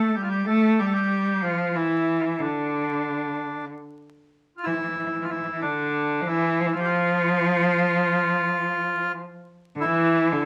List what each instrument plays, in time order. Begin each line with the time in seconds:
Already playing: accordion A4
0.08 cello A3
0.15 cello G3, accordion G4
0.22 accordion F4
0.29 accordion G4
0.46 cello A3, accordion A4
0.79 cello G3, accordion G4
0.85 accordion A4
0.92 accordion G4
1.43 cello F3, accordion F4
1.75 cello E3, accordion E4
2.20 accordion E4 F4
2.40 cello D3, accordion D4
4.57 accordion F4
4.64 cello E3, accordion E4
4.75 cello E3
4.82 cello E3
4.89 cello E3
4.97 cello E3
5.05 cello E3
5.11 cello E3
5.20 cello E3, accordion F4
5.29 cello E3, accordion E4
5.35 cello E3
5.42 cello E3
5.51 cello E3
5.61 cello D3, accordion D4
6.21 cello F3
6.27 cello E3, accordion E4
6.60 cello F3
6.67 cello E3
6.73 cello F3, accordion F4
6.79 accordion G4
6.85 accordion F4
9.76 cello D3
9.80 accordion E4
9.84 cello E3
10.32 cello D3